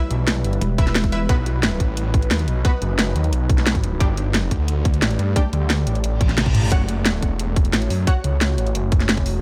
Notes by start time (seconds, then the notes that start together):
Already playing: G3 E4 B4
0.10 B1, closed hi-hat
0.28 snare, closed hi-hat
0.44 G1, closed hi-hat
0.53 closed hi-hat
0.61 E1, closed hi-hat
0.78 E4 B4 E5, kick, closed hi-hat
0.87 snare, closed hi-hat
0.95 snare, closed hi-hat
1.04 kick, closed hi-hat
1.12 E4 B4 E5, closed hi-hat
1.29 B1 F#3 B3 D#4 F#4 B4, kick, closed hi-hat
1.46 closed hi-hat
1.63 snare, closed hi-hat
1.80 A1, kick, closed hi-hat
1.97 closed hi-hat
2.14 kick, closed hi-hat
2.22 closed hi-hat
2.31 D#2, snare, closed hi-hat
2.39 closed hi-hat
2.48 B1, closed hi-hat
2.65 B3 F#4 B4, kick, closed hi-hat
2.82 F#1, closed hi-hat
2.99 snare, closed hi-hat
3.16 D#2, closed hi-hat
3.24 closed hi-hat
3.33 B1, closed hi-hat
3.49 kick, closed hi-hat
3.58 snare, closed hi-hat
3.67 snare, closed hi-hat
3.75 kick, closed hi-hat
3.84 closed hi-hat
4.00 G1 G3 A3 D4 G4 D5, kick, closed hi-hat
4.17 closed hi-hat
4.34 snare, closed hi-hat
4.51 D2, kick, closed hi-hat
4.68 closed hi-hat
4.85 kick, closed hi-hat
4.94 closed hi-hat
5.02 A1, snare, closed hi-hat
5.11 closed hi-hat
5.19 G2, closed hi-hat
5.36 G3 D4 G4, kick, closed hi-hat
5.53 D2, closed hi-hat
5.70 snare, closed hi-hat
5.87 A1, closed hi-hat
5.95 closed hi-hat
6.04 A1, closed hi-hat, reverse cymbal
6.21 kick, closed hi-hat, high tom
6.29 snare, closed hi-hat
6.38 snare, closed hi-hat, mid tom
6.46 kick, closed hi-hat, mid tom
6.55 closed hi-hat, mid tom
6.63 mid tom
6.72 F#1 F#4 C#5 F#5, kick, closed hi-hat
6.89 closed hi-hat
7.05 snare, closed hi-hat
7.22 E1, kick, closed hi-hat
7.39 closed hi-hat
7.56 kick, closed hi-hat
7.65 closed hi-hat
7.73 A1, snare, closed hi-hat
7.82 closed hi-hat
7.90 F#2, open hi-hat
8.07 F#4 C#5 F#5, kick, closed hi-hat
8.24 C#2, closed hi-hat
8.41 snare, closed hi-hat
8.58 A1, closed hi-hat
8.67 closed hi-hat
8.75 F#1, closed hi-hat
8.92 kick, closed hi-hat
9.00 snare, closed hi-hat
9.09 snare, closed hi-hat
9.17 kick, closed hi-hat
9.22 F1, open hi-hat